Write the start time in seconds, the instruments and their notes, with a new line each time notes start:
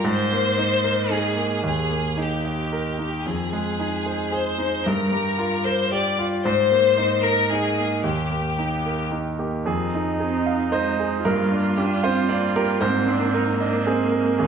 0.04 grand piano G#2
0.08 violin section C5
0.32 grand piano A#3
0.58 grand piano D#4
0.84 grand piano A#4
1.10 grand piano D#4, violin section G#4
1.36 grand piano A#3
1.63 grand piano D#2, violin section G#4
1.91 grand piano A#3
2.17 grand piano D#4, violin section G4
2.45 grand piano D#5
2.72 grand piano A#4
2.99 grand piano D#4, violin section G4
3.24 grand piano F2, violin section G#4
3.52 grand piano G#3
3.79 grand piano D#4
4.06 grand piano C5
4.32 grand piano G#4, violin section C5
4.58 grand piano D#4
4.86 grand piano G2, violin section A#4
5.12 grand piano G3
5.39 grand piano F4
5.65 grand piano A#4, violin section C5
5.92 grand piano G4, violin section D5
6.19 grand piano F4
6.45 grand piano G#2, violin section C5
6.71 grand piano A#3
6.97 grand piano D#4
7.23 violin section A#4, grand piano A#4
7.51 grand piano D#4, violin section G#4
7.78 grand piano A#3
8.03 grand piano D#2, violin section G4
8.30 grand piano A#3
8.59 grand piano D#4
8.86 grand piano A#4
9.11 grand piano D#4
9.39 grand piano A#3 G4
9.65 grand piano F2 G#4, viola D#4
9.95 grand piano D#4
10.20 cello C4, grand piano G#4
10.46 grand piano F5
10.72 cello G#3, grand piano C5 D#5
11.00 grand piano G#4
11.24 grand piano G2 A#4, cello A#3, viola F4
11.51 grand piano D4
11.77 cello D4, grand piano G4
12.03 cello C4, grand piano C5 F5
12.29 cello A#3, grand piano D5
12.56 grand piano G4 A#4
12.80 grand piano G#2 C5, viola A#3, cello C4
13.07 grand piano C4, cello D4
13.34 cello D#4, grand piano A#4
13.60 cello D4, grand piano D#5
13.87 cello C4, grand piano G#4 C5
14.12 grand piano A#4
14.39 grand piano D#2 G#4, cello D#4